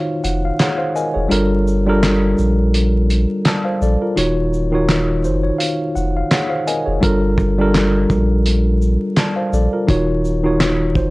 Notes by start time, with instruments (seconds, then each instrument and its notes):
Already playing: tine electric piano D#3 D#4 F4 F#4 C5 C#5 F5
0.24 sub bass F1, tine electric piano F#5, closed hi-hat, shaker
0.45 tine electric piano F5
0.59 tine electric piano G#4 C#5 F#5, snare, clap, closed hi-hat
0.78 tine electric piano C5 F5
0.96 tine electric piano A#4 D#5 G#5, shaker
1.14 sub bass F1, tine electric piano G#4 C#5
1.29 sub bass G1, tine electric piano G3 D4 F4 A4 A#4, closed hi-hat
1.68 shaker
1.86 tine electric piano G3 D4 F4 A4 A#4
2.03 snare, clap, closed hi-hat
2.38 sub bass A#1, shaker
2.74 closed hi-hat
3.10 closed hi-hat, shaker
3.45 tine electric piano D5 A5, snare, clap, closed hi-hat
3.64 tine electric piano C5 F5
3.81 sub bass A#1, tine electric piano A4 D5, shaker
4.02 tine electric piano F4 A#4
4.15 sub bass D#1, tine electric piano D#3 D#4 F4 F#4 C#5, closed hi-hat
4.53 shaker
4.72 tine electric piano D#3 D#4 F4 F#4 C#5
4.89 snare, clap, closed hi-hat
5.24 sub bass F#1, tine electric piano C5, shaker
5.43 tine electric piano C#5
5.59 tine electric piano F5, closed hi-hat
5.95 sub bass F1, tine electric piano F#5, shaker
6.17 tine electric piano F5
6.31 tine electric piano G#4 C#5 F#5, snare, clap, closed hi-hat
6.49 tine electric piano C5 F5
6.67 tine electric piano A#4 D#5 G#5, closed hi-hat, shaker
6.86 sub bass F1, tine electric piano G#4 C#5
7.01 sub bass G1, tine electric piano G3 D4 F4 A4 A#4, kick, closed hi-hat
7.38 kick, shaker
7.58 tine electric piano G3 D4 F4 A4 A#4
7.75 snare, clap, closed hi-hat
8.10 sub bass A#1, kick, shaker
8.46 closed hi-hat
8.82 shaker
9.16 tine electric piano D5 A5, snare, clap, closed hi-hat
9.36 tine electric piano C5 F5
9.53 sub bass A#1, tine electric piano A4 D5, shaker
9.73 tine electric piano F4 A#4
9.87 sub bass D#1, tine electric piano D#3 D#4 F4 F#4 C#5, kick, closed hi-hat
10.25 shaker
10.43 tine electric piano D#3 D#4 F4 F#4 C#5
10.60 snare, clap, closed hi-hat
10.95 sub bass F#1, tine electric piano C5, kick, shaker